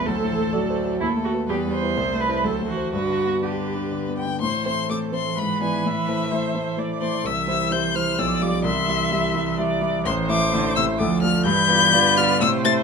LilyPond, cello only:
\new Staff \with { instrumentName = "Cello" } { \clef bass \time 3/4 \key g \major \tempo 4 = 127 fis8 e8 fis4 a4 | g4 a4 fis8 e8 | d4 d4. r8 | \key a \minor e2.~ |
e2. | e2 f4 | e2. | \key g \mixolydian e4 d8 c8 f4 |
e4 d4 c4 | }